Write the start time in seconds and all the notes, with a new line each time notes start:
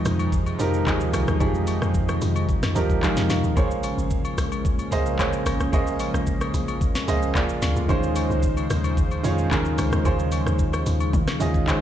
Already playing: C3 D#3 F3 G#3 D#4 G4 G#4 A#5
0.05 F2, cross-stick, open hi-hat, shaker
0.19 high agogo, shaker
0.32 kick, shaker
0.46 high agogo, shaker
0.58 F2 F3 D#4 G4 A#4, open hi-hat, shaker
0.74 shaker
0.85 D#2 F3 D#4 G4 G#4, kick, clap, high agogo, low woodblock, shaker
1.00 shaker
1.13 C2, cross-stick, open hi-hat, high agogo, shaker
1.28 D#2, cross-stick, shaker
1.40 F2 F3 D#4 G4 G#4, kick, high agogo, shaker
1.55 shaker
1.67 open hi-hat, high agogo, shaker
1.82 F2, cross-stick, shaker
1.94 kick, shaker
2.09 cross-stick, high agogo, shaker
2.22 F2, open hi-hat, shaker
2.36 high agogo, shaker
2.49 kick, shaker
2.63 F2, cross-stick, snare, high agogo, shaker
2.75 D#2 F3 D#4 G4 A#4 A#5, open hi-hat, shaker
2.90 kick, shaker
3.02 F3 D#4 G4 A#4 G#5, kick, clap, high agogo, low woodblock, shaker
3.17 F2, snare, shaker
3.30 F2 F5, snare, open hi-hat, high agogo, shaker
3.44 D#2, shaker
3.56 A#1 C#3 A#3 C#4 G#4 C5 C#5, kick, high agogo, shaker
3.71 shaker
3.83 open hi-hat, high agogo, shaker
3.98 G#1, shaker
4.10 kick, shaker
4.25 high agogo, shaker
4.38 A#1, cross-stick, open hi-hat, shaker
4.52 high agogo, shaker
4.65 kick, shaker
4.79 high agogo, shaker
4.91 C#2 A#3 G#4 C5 D#5, open hi-hat, shaker
5.06 shaker
5.18 A#1 A#3 G#4 C5 C#5, kick, clap, high agogo, low woodblock, shaker
5.33 shaker
5.46 G#1, cross-stick, open hi-hat, high agogo, shaker
5.60 A#1, cross-stick, shaker
5.72 A#1 A#3 G#4 C5 D#5, kick, high agogo, shaker
5.87 shaker
6.00 open hi-hat, high agogo, shaker
6.14 A#1, cross-stick, shaker
6.27 kick, shaker
6.41 cross-stick, high agogo, shaker
6.54 A#1, open hi-hat, shaker
6.68 high agogo, shaker
6.81 kick, shaker
6.95 snare, high agogo, shaker
7.07 C#2 A#3 G#4 C5 D#5, open hi-hat, shaker
7.22 shaker
7.34 A#1 D3 G#3 A#3 F4 G#4 D5, kick, clap, high agogo, low woodblock, shaker
7.49 shaker
7.62 D2, snare, open hi-hat, high agogo, shaker
7.76 D2, shaker
7.88 D#2 C#3 D#3 F3 C#4 D#4 F4 G#4 C5, kick, high agogo, shaker
8.03 shaker
8.16 open hi-hat, high agogo, shaker
8.30 C#2, shaker
8.43 kick, shaker
8.57 high agogo, shaker
8.70 D#2, cross-stick, open hi-hat, shaker
8.84 high agogo, shaker
8.97 kick, shaker
9.11 high agogo, shaker
9.23 F2 D#3 C#4 F4 G#4 C#5, open hi-hat, shaker
9.38 shaker
9.50 D#2 D#3 C#4 F4 G#4 A#4, kick, clap, high agogo, low woodblock, shaker
9.65 shaker
9.78 C#2, cross-stick, open hi-hat, high agogo, shaker
9.92 D#2, cross-stick, shaker
10.04 D#2 D#3 C#4 F4 G#4 C5, kick, high agogo, shaker
10.19 shaker
10.32 open hi-hat, high agogo, shaker
10.46 D#2, cross-stick, shaker
10.59 kick, shaker
10.73 cross-stick, high agogo, shaker
10.86 D#2, open hi-hat, shaker
11.00 high agogo, shaker
11.13 D#3, kick, shaker
11.27 cross-stick, snare, high agogo, shaker
11.40 D#2 D#3 C#4 F4 G#4 D#5, open hi-hat, shaker
11.54 kick, shaker
11.67 D#3 C#4 F4 G#4 C5, kick, clap, high agogo, low woodblock, shaker